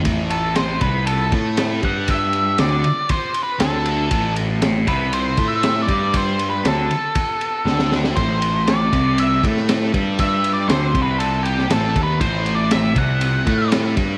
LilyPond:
<<
  \new Staff \with { instrumentName = "Lead electric guitar" } { \time 4/4 \key a \dorian \tempo 4 = 118 r8 a'8 c''8 b'8 a'8 r4 fis''8 | e''4 d''4 \tuplet 3/2 { c''4 b'8 } a'4~ | a'8 r4 b'8 \tuplet 3/2 { c''4 e''8~ e''8 d''4 } | \tuplet 3/2 { c''4 b'8 } a'2~ a'8 r8 |
c''4 d''4 e''8 r4. | \tuplet 3/2 { e''4 d''8 c''4 b'8 } a'8 g'8 \tuplet 3/2 { a'4 b'8 } | \tuplet 3/2 { c''4 d''8 } e''8 fis''4. r4 | }
  \new Staff \with { instrumentName = "Distorted electric guitar" } { \clef bass \time 4/4 \key a \dorian a,4. c4 a4 g8~ | g4 d8 r4. d4 | a,4. c4 a4 g8~ | g4 d8 r4. d4 |
a,4. c4 a4 g8~ | g4 d8 c4. a,8 dis8 | a,4. c4 a4 g8 | }
  \new Staff \with { instrumentName = "Picked electric bass" } { \clef bass \time 4/4 \key a \dorian a,,4. c,4 a,4 g,8~ | g,4 d,8 r4. d,4 | a,,4. c,4 a,4 g,8~ | g,4 d,8 r4. d,4 |
a,,4. c,4 a,4 g,8~ | g,4 d,8 c,4. a,,8 dis,8 | a,,4. c,4 a,4 g,8 | }
  \new DrumStaff \with { instrumentName = "Drums" } \drummode { \time 4/4 <bd cymr>8 cymr8 <cymr sn>8 <bd cymr>8 cymr8 <bd cymr>8 <cymr sn>8 <bd cymr>8 | <bd cymr>8 cymr8 <cymr sn>8 cymr8 <bd cymr>8 cymr8 <cymr sn>8 cymr8 | <bd cymr>8 cymr8 <cymr sn>8 <bd cymr>8 cymr8 <bd cymr>8 <cymr sn>8 <bd cymr>8 | <bd cymr>8 cymr8 <cymr sn>8 cymr8 <bd cymr>8 cymr8 sn16 sn16 sn16 sn16 |
<bd cymr>8 cymr8 <cymr sn>8 <bd cymr>8 cymr8 <bd cymr>16 sn16 <cymr sn>8 <bd cymr>8 | <bd cymr>8 cymr8 <cymr sn>8 <bd cymr>8 cymr8 cymr16 sn16 <cymr sn>8 <bd cymr>8 | <bd cymr>8 cymr8 <cymr sn>8 <bd cymr>8 cymr8 <bd cymr>8 <cymr sn>8 <bd cymr>8 | }
>>